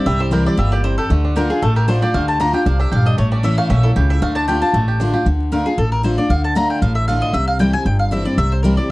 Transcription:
Already playing: E4 G4
0.06 C2 C3 G3 E5
0.20 E4 C5
0.31 E3 G3 C4 E4 G4 A#4
0.46 E4 D5
0.57 G1 A#2 G3 E5
0.72 G4 D5
0.84 C3 E4 C5
0.98 G4 A4
1.10 D2 D3 A3
1.25 D4
1.36 D3 A3 D4 F4 G4 A#4
1.50 D4 F4 G#4
1.62 A1 A2 A3 A4
1.76 G4 A#4
1.88 D3 A3 D4 F4 C5
2.02 D4 F4 G4 D5
2.14 D2 D3 A3 F5
2.28 A5
2.40 D3 A3 D4 F4 A#5
2.53 D4 F4 G4 G5
2.66 C2 C3 D4 F5
2.79 D4 E5
2.92 A#1 G2 G4 F5
3.06 D4 D#5
3.18 A1 A2 A3 C#5
3.32 C#4 D5
3.43 E3 A3 C#4 E4 E5
3.58 A3 F5
3.69 A#1 A#2 C#4 E5
3.83 E4 A4
3.96 C#2 C#3 G4
4.10 E4 E5
4.21 D2 D3 A3 F5
4.35 D4 A5
4.48 D3 A3 D4 F4 G4 G5
4.62 D4 F4 A5
4.73 A1 A2 A3
4.88 G4
5.00 D3 A3 D4 F4
5.13 D4 F4 G4
5.26 D2 D3
5.52 D3 A3 D4 F4 A#4
5.66 D4 F4 G#4
5.78 A1 A2 A4
5.92 A#4
6.03 D3 A3 D4 F4 C5
6.17 D4 F4 D5
6.30 D2 D3 F5
6.44 A5
6.55 D3 A3 D4 F4 A#5
6.70 G5
6.82 A1 A2 F5
6.95 E5
7.08 D3 A3 D4 F4 F5
7.22 D#5
7.33 C2 C3 E5
7.48 F5
7.59 E3 G3 C4 E4 G5
7.73 C4 E4 G#5
7.85 G1 G2 G5
7.99 F5
8.11 E3 G3 C4 E4 E5
8.25 C4 E4 D5
8.38 C2 C3 E5
8.52 C5
8.63 E3 G3 C4 E4 A#4
8.77 C4 E4 D5

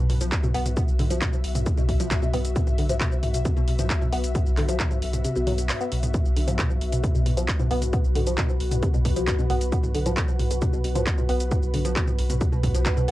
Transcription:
Already playing: B3 F#4 E5
0.10 B1 B2, mid tom, open hi-hat
0.21 B1 F3, closed hi-hat, shaker
0.32 kick, clap, closed hi-hat, shaker
0.43 B2, mid tom, shaker
0.54 B1 B3, open hi-hat
0.66 B1, closed hi-hat, mid tom, shaker
0.77 B2, kick, closed hi-hat, shaker
0.88 B1, shaker
0.99 B1 D3, mid tom, open hi-hat
1.10 B1 F3, closed hi-hat, shaker
1.22 B2, kick, clap, closed hi-hat, mid tom, shaker
1.33 shaker
1.44 B1, open hi-hat
1.55 B1 B2, closed hi-hat, mid tom, shaker
1.66 C3, kick, closed hi-hat, shaker
1.78 B1 B2, mid tom, shaker
1.89 B1 B2, kick, open hi-hat
2.00 B1 F3, closed hi-hat, shaker
2.11 kick, clap, closed hi-hat, mid tom, shaker
2.22 B2, shaker
2.33 B1 B3, mid tom, open hi-hat
2.45 B1, closed hi-hat, shaker
2.56 B2, kick, closed hi-hat, shaker
2.67 B1, mid tom, shaker
2.78 B1 D3, open hi-hat
2.89 B1 F3, closed hi-hat, mid tom, shaker
3.01 B2, kick, clap, closed hi-hat, shaker
3.12 shaker
3.23 B1, mid tom, open hi-hat
3.34 B1 B2, closed hi-hat, shaker
3.45 C3, kick, closed hi-hat, mid tom, shaker
3.57 B1 B2, shaker
3.68 B1 B2, open hi-hat
3.79 B1 F3, closed hi-hat, mid tom, shaker
3.90 kick, clap, closed hi-hat, shaker
4.01 B2, mid tom, shaker
4.13 B1 B3, open hi-hat
4.24 B1, closed hi-hat, shaker
4.35 B2, kick, closed hi-hat, mid tom, shaker
4.46 B1, shaker
4.57 B1 D3, clap, mid tom, open hi-hat
4.69 B1 F3, closed hi-hat, shaker
4.80 B2, kick, clap, closed hi-hat, shaker
4.91 mid tom, shaker
5.02 B1, open hi-hat
5.13 B1 B2, closed hi-hat, mid tom, shaker
5.25 C3, closed hi-hat, shaker
5.36 B1 B2, shaker
5.47 B1 F#3, mid tom, open hi-hat
5.58 B1 B2, closed hi-hat, shaker
5.69 clap, mid tom, open hi-hat, shaker
5.81 B3, shaker
5.92 B1 B2, open hi-hat
6.03 B1, closed hi-hat, mid tom, shaker
6.14 B2, kick, closed hi-hat, mid tom, shaker
6.25 B1, shaker
6.36 B1 D3, open hi-hat
6.48 B1 F3, closed hi-hat, mid tom, shaker
6.59 B2, kick, clap, closed hi-hat, shaker
6.70 mid tom, shaker
6.81 B1, open hi-hat
6.90 B1 B2 B4, closed hi-hat, shaker
7.04 C3, kick, closed hi-hat, mid tom, shaker
7.15 B1 B2, shaker
7.26 B1 B2, mid tom, open hi-hat
7.37 B1 F3, closed hi-hat, shaker
7.48 kick, clap, closed hi-hat, shaker
7.60 B2, mid tom, shaker
7.71 B1 B3, open hi-hat
7.82 B1, closed hi-hat, mid tom, shaker
7.93 B2, kick, closed hi-hat, shaker
8.04 B1, shaker
8.16 B1 D3, mid tom, open hi-hat
8.27 B1 F3, closed hi-hat, shaker
8.38 B2, kick, clap, closed hi-hat, mid tom, shaker
8.49 shaker
8.60 B1, open hi-hat
8.71 B1 B2, closed hi-hat, mid tom, shaker
8.83 C3, kick, closed hi-hat, shaker
8.94 B1 B2, mid tom, shaker
9.05 B1 B2, kick, open hi-hat
9.16 B1 F3, closed hi-hat, shaker
9.27 kick, clap, closed hi-hat, mid tom, shaker
9.39 B2, shaker
9.50 B1 B3, mid tom, open hi-hat
9.61 B1, closed hi-hat, shaker
9.72 B2, kick, closed hi-hat, shaker
9.83 B1, mid tom, shaker
9.95 B1 D3, open hi-hat
10.06 B1 F3, closed hi-hat, mid tom, shaker
10.17 B2, kick, clap, closed hi-hat, shaker
10.28 shaker
10.39 B1, mid tom, open hi-hat
10.51 B1 B2, closed hi-hat, shaker
10.62 C3, kick, closed hi-hat, mid tom, shaker
10.73 B1 B2, shaker
10.84 B1 B2, open hi-hat
10.95 B1 F3, closed hi-hat, mid tom, shaker
11.07 kick, clap, closed hi-hat, shaker
11.18 B2, mid tom, shaker
11.29 B1 B3, open hi-hat
11.40 B1, closed hi-hat, shaker
11.51 B2, kick, closed hi-hat, mid tom, shaker
11.63 B1, shaker
11.74 B1 D3, mid tom, open hi-hat
11.85 B1 F3, closed hi-hat, shaker
11.96 B2, kick, clap, closed hi-hat, shaker
12.07 mid tom, shaker
12.19 B1, open hi-hat
12.30 B1 B2, closed hi-hat, mid tom, shaker
12.41 C3, kick, closed hi-hat, shaker
12.52 B1 B2, shaker
12.63 B1 B2, kick, mid tom, open hi-hat
12.74 B1 F3, closed hi-hat, shaker
12.86 kick, clap, closed hi-hat, mid tom, shaker
12.97 B2, shaker

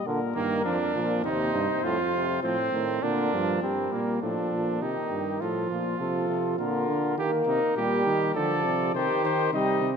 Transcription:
0.06 A#2 D3 A#4
0.35 G2 D#3 A#3
0.64 F2 F3 D4
0.94 A#2 F3
1.24 D#2 C3 D#4 C5
1.54 G2
1.84 F2 A2 F4
2.13 C3
2.43 A2 F3 C4 C5
2.73 A2 D#3
3.02 A#2 D3 D4 A#4
3.33 G2 F3
3.62 G2 G3 C4 A#4
3.92 A#2 A#3
4.22 A2 F3 D4 A4
4.52 A#2
4.82 C3 D#3 D#4 G4
5.11 G2
5.41 A2 F3 F4 A4
5.70 A#2 F4
5.99 C3 F3 A4
6.29 C3
6.58 A#2 D3 F4 A#4
6.88 D3
7.17 D#3 A#3 G4 A#4
7.46 C3 D#4
7.76 A#2 G3 G4
8.06 D#3
8.35 D3 F3 A4 D5
8.65 C3
8.94 C3 D#3 G4 C5
9.23 D#3 C5
9.53 C3 G3 D#4 D#5
9.81 C3

